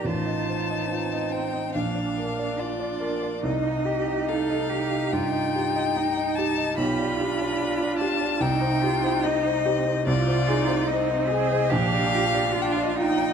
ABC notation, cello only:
X:1
M:4/4
L:1/8
Q:1/4=72
K:Cdor
V:1 name="Cello"
F2 C2 D2 F2 | E G A G F2 E2 | G D3 E F E C | [K:Ablyd] F2 E A G2 F E |]